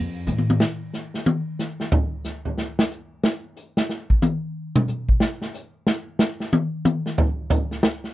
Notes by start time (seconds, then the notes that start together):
Already playing: F2
0.27 A2, hi-hat pedal, high tom
0.38 high tom
0.50 high tom
0.60 snare
0.93 snare, hi-hat pedal
1.14 snare
1.26 high tom
1.59 snare, hi-hat pedal
1.80 snare
1.92 floor tom
2.24 snare, hi-hat pedal
2.45 floor tom
2.58 snare
2.79 snare
2.91 hi-hat pedal
3.24 snare
3.56 hi-hat pedal
3.77 snare
3.89 snare
4.10 kick
4.22 hi-hat pedal, high tom
4.75 mid tom
4.88 hi-hat pedal, mid tom
5.09 kick
5.20 snare
5.42 snare
5.54 hi-hat pedal
5.87 snare
6.19 snare, hi-hat pedal
6.40 snare
6.53 high tom
6.85 hi-hat pedal, high tom
7.06 snare
7.18 floor tom
7.50 floor tom, hi-hat pedal
7.71 snare
7.83 snare
8.04 snare